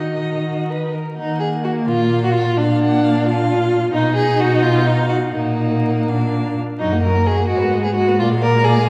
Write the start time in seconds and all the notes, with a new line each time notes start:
Already playing: D#3 D#4 F#4 D#5
0.46 F#4
0.70 B4
0.93 A#4
1.17 D#3 A#3 D#4 F#5
1.40 G#4
1.64 F#4
1.87 A#2 F4 F5
2.24 F#4
2.34 F4
2.58 A#2 A#3 D4 F5
2.83 F#5
3.04 F5
3.27 F4 F5
3.94 B2 D#4 D#5
4.16 G#4
4.39 F#4
4.62 F4
4.86 D#4 F5
5.09 F#4
5.33 A#2 A#3 D#4 F#5
6.08 A#2 D4 F5
6.79 F#2 F#3 D#4 D#5
6.92 A#3 F#5
7.03 F#3 A#4 D#5
7.14 A#3 F#5
7.25 F#3 G#4 D#5
7.37 A#3 F#5
7.48 G#2 G#3 F#4 D#5
7.58 B4
7.63 B3
7.71 G#3 D#5
7.84 B3 G#4 B4
7.95 G#3 F#4 D#5
8.07 B3 B4
8.19 A#2 A#3 F4 D5
8.31 G#3 F5
8.42 A#3 A#4 D5
8.53 G#3 F5
8.65 A#3 G#4 D5
8.76 G#3 F5